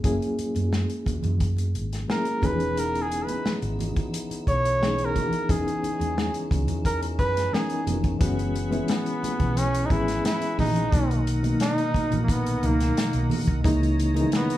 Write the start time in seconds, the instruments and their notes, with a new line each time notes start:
Already playing: reed electric piano F#3 A#3 C#4 E4 G#4
0.03 fingered electric bass F#1, reed electric piano F#3 A#3 C#4 E4 G#4, kick, closed hi-hat, muted conga
0.22 closed hi-hat
0.38 muted fingered electric bass stroke, closed hi-hat
0.55 fingered electric bass F#2, closed hi-hat, high conga
0.72 snare, muted conga
0.89 closed hi-hat
1.06 fingered electric bass E2, kick, closed hi-hat, high conga, low conga
1.23 fingered electric bass F#2, closed hi-hat, low conga
1.40 kick, closed hi-hat
1.57 closed hi-hat, muted conga
1.75 fingered electric bass G#1, closed hi-hat
1.92 snare, closed hi-hat
2.08 reed electric piano F#3 A#3 C#4 E4 G#4, flugelhorn A#4, snare, muted conga
2.25 closed hi-hat, muted conga
2.42 fingered electric bass E1, reed electric piano D#3 B3 C#4 D#4 G#4, flugelhorn B4, kick, closed hi-hat, high conga, low conga
2.49 reed electric piano E3
2.60 closed hi-hat
2.76 tonewheel organ C#3 E3 B3 D#4, flugelhorn A#4, closed hi-hat, muted conga
2.95 closed hi-hat, muted conga
3.02 flugelhorn G#4
3.11 closed hi-hat
3.24 flugelhorn B4, high conga
3.28 closed hi-hat
3.45 muted fingered electric bass stroke, snare, muted conga
3.62 fingered electric bass G#1, closed hi-hat, muted conga
3.79 closed hi-hat, high conga, low conga
3.96 kick, closed hi-hat, low conga
4.14 closed hi-hat
4.30 muted fingered electric bass stroke, closed hi-hat, muted conga
4.47 fingered electric bass B1, flugelhorn C#5, kick, closed hi-hat
4.65 closed hi-hat
4.80 reed electric piano E3 B3 C#4 D#4 G#4, snare, muted conga
4.98 closed hi-hat
5.05 flugelhorn A#4
5.15 kick, closed hi-hat, high conga, low conga
5.32 closed hi-hat
5.49 fingered electric bass E1, reed electric piano E3 B3 C#4 D#4 G#4, tonewheel organ C#4, flugelhorn G#4, kick, closed hi-hat
5.68 closed hi-hat
5.83 muted fingered electric bass stroke, closed hi-hat
6.00 fingered electric bass E2, closed hi-hat, high conga
6.18 snare, muted conga
6.34 closed hi-hat
6.51 fingered electric bass C#2, kick, closed hi-hat, high conga, low conga
6.68 fingered electric bass E2, closed hi-hat, low conga
6.85 flugelhorn A#4, kick, closed hi-hat, muted conga
7.01 closed hi-hat, muted conga
7.19 fingered electric bass F#2, flugelhorn B4, kick, closed hi-hat
7.37 snare, closed hi-hat
7.52 reed electric piano E3 B3 C#4 D#4 A#4, flugelhorn G#4, snare, high conga
7.69 closed hi-hat
7.87 fingered electric bass F1, closed hi-hat, high conga, low conga
8.04 kick, closed hi-hat
8.19 fingered electric bass F#1, reed electric piano E3 G#3 B3 C#4 F#4, tonewheel organ E3 G#4 B4 F#5, kick, closed hi-hat, muted conga
8.39 closed hi-hat, muted conga
8.55 closed hi-hat
8.71 reed electric piano E3 G#3 B3 C#4 E4, closed hi-hat, high conga
8.88 flugelhorn B3, snare, closed hi-hat
9.06 closed hi-hat
9.23 muted fingered electric bass stroke, closed hi-hat, high conga
9.39 fingered electric bass B1, kick, closed hi-hat, low conga
9.57 flugelhorn C#4, closed hi-hat, muted conga
9.74 closed hi-hat
9.86 flugelhorn D#4
9.90 fingered electric bass G#1, reed electric piano E3 G#3 B3 C#4 G#4, flugelhorn E4, kick, closed hi-hat
10.08 snare, closed hi-hat
10.25 flugelhorn E4, snare, closed hi-hat, high conga
10.41 closed hi-hat, muted conga
10.59 fingered electric bass A#1, flugelhorn D#4, kick, open hi-hat, high conga, low conga
10.76 closed hi-hat
10.92 fingered electric bass B1, reed electric piano B2 D#3 F#3 A#3 D#4, tonewheel organ D#4 A#4 D#5, kick, closed hi-hat, muted conga
11.10 closed hi-hat, muted conga
11.27 closed hi-hat
11.43 reed electric piano B2 D#3 F#3 A#3 D#4, closed hi-hat, high conga
11.60 flugelhorn D#4, snare, closed hi-hat, muted conga
11.77 closed hi-hat, muted conga
11.94 muted fingered electric bass stroke, kick, closed hi-hat, high conga
12.11 fingered electric bass A#1, closed hi-hat, low conga
12.23 flugelhorn A#3
12.28 flugelhorn B3, kick, closed hi-hat, muted conga
12.46 closed hi-hat
12.61 fingered electric bass C#2, reed electric piano B2 D#3 F#3 A#3 D#4, closed hi-hat
12.66 flugelhorn A#3
12.80 snare, closed hi-hat
12.96 muted fingered electric bass stroke, snare, closed hi-hat, muted conga, high conga
13.13 fingered electric bass B1, closed hi-hat, muted conga
13.30 open hi-hat, high conga, low conga
13.48 fingered electric bass C2, kick, closed hi-hat
13.64 fingered electric bass C#2, reed electric piano C#3 E3 G#3 A#3 D#4, tonewheel organ E3 C#5 D#5 A#5, kick, closed hi-hat
13.83 closed hi-hat
13.99 closed hi-hat
14.14 reed electric piano C#3 D#3 G#3 D#4 A#4, closed hi-hat, high conga
14.21 reed electric piano E3
14.32 snare, closed hi-hat, muted conga
14.36 flugelhorn B3
14.50 closed hi-hat, muted conga